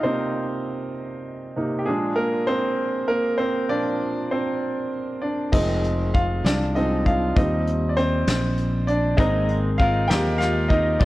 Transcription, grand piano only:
0.00 0.03 C3 soft
0.00 1.55 C3 soft
0.00 0.04 A#3 soft
0.00 1.56 A#3 soft
0.00 1.88 D4 medium
0.00 0.05 D#4 medium
0.00 1.89 F4 medium
0.00 0.91 C5 medium
0.00 1.89 D5 medium
0.00 1.89 D#5 medium
0.00 1.89 F5 medium
0.00 1.89 G5 medium
0.04 0.92 C4 medium
0.04 1.56 D#4 medium
1.56 1.84 C3 soft
1.56 1.84 A#3 soft
1.56 1.84 D#4 soft
1.79 1.86 G4 soft
1.86 3.65 A#2 soft
1.86 3.65 F3 soft
1.86 2.16 G#3 medium
1.86 3.65 D4 soft
1.86 2.17 G#4 medium
2.16 2.25 A#3 soft
2.16 2.23 A#4 medium
2.47 3.05 C4 medium
2.47 3.10 C5 medium
3.08 3.37 A#3 medium
3.08 3.36 A#4 medium
3.38 3.67 C4 medium
3.38 3.69 C5 medium
3.69 4.57 A#2 soft
3.69 4.57 F3 soft
3.69 4.88 D4 medium
3.69 4.88 D5 medium
4.31 5.19 C4 medium
4.31 5.26 C5 medium
5.22 5.51 D4 soft
5.22 5.54 D5 medium
5.52 6.75 F3 soft
5.52 6.75 G#3 soft
5.52 6.75 C4 medium
5.52 6.11 D#4 medium
5.52 6.16 D#5 medium
6.14 6.43 F4 medium
6.14 6.46 F5 medium
6.45 6.74 D4 medium
6.45 6.73 D5 medium
6.75 7.03 F3 soft
6.75 7.03 G#3 soft
6.75 7.03 C4 soft
6.75 7.05 D#4 medium
6.75 7.07 D#5 medium
7.06 7.35 F4 medium
7.06 7.37 F5 medium
7.36 7.76 F3 soft
7.36 7.77 G3 soft
7.36 7.77 C4 medium
7.36 7.87 D#4 medium
7.36 7.91 D#5 medium
7.89 7.96 D5 medium
7.97 8.84 C4 medium
7.97 8.90 C5 medium
8.87 9.17 D4 medium
8.87 9.19 D5 medium
9.17 9.58 G#3 soft
9.17 9.59 A#3 soft
9.17 9.59 C4 medium
9.17 9.75 D#4 medium
9.17 9.80 D#5 medium
9.78 9.87 F4 medium
9.78 9.85 F5 loud
10.07 10.38 G4 medium
10.07 10.36 G5 medium
10.38 10.68 F4 medium
10.38 10.70 F5 medium
10.69 10.78 D#4 medium
10.69 10.76 D#5 medium
11.00 11.05 G#3 soft
11.00 11.05 C4 soft
11.00 11.05 D4 medium
11.00 11.05 D5 medium

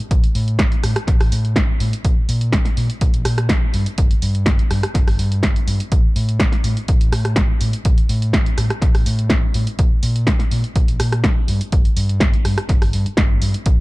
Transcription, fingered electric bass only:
0.11 0.21 A1 loud
0.35 0.61 A2 medium
0.59 0.70 A1 medium
0.84 0.94 A2 medium
1.08 1.28 A1 medium
1.32 1.58 A2 medium
1.56 1.67 A1 medium
1.80 1.91 A2 medium
2.05 2.15 A#1 medium
2.29 2.55 A#2 medium
2.53 2.63 A#1 medium
2.77 2.88 A#2 medium
3.01 3.21 A#1 medium
3.25 3.51 A#2 medium
3.50 3.60 A#1 medium
3.74 3.84 G2 medium
3.98 4.09 G1 medium
4.23 4.48 G2 medium
4.47 4.57 G1 medium
4.71 4.81 G2 medium
4.95 5.15 G1 medium
5.19 5.45 G2 medium
5.43 5.54 G1 medium
5.67 5.78 G2 loud
5.92 6.02 A1 medium
6.16 6.42 A2 medium
6.40 6.50 A1 medium
6.64 6.75 A2 medium
6.89 7.09 A1 medium
7.12 7.38 A2 medium
7.37 7.47 A1 medium
7.61 7.71 A2 medium
7.85 7.96 A1 medium
8.09 8.35 A2 medium
8.34 8.44 A1 medium
8.58 8.68 A2 medium
8.82 9.02 A1 medium
9.06 9.32 A2 medium
9.30 9.41 A1 medium
9.55 9.65 A2 medium
9.79 9.89 A#1 medium
10.03 10.29 A#2 medium
10.27 10.38 A#1 medium
10.52 10.62 A#2 medium
10.76 10.96 A#1 medium
11.00 11.26 A#2 medium
11.24 11.34 A#1 medium
11.48 11.59 G2 medium
11.73 11.83 G1 medium
11.97 12.22 G2 medium
12.21 12.31 G1 medium
12.45 12.55 G2 medium
12.69 12.89 G1 medium
12.94 13.04 G2 medium
13.07 muted fingered electric bass stroke soft
13.18 13.38 G1 medium
13.42 13.52 G2 medium
13.66 13.76 A1 medium

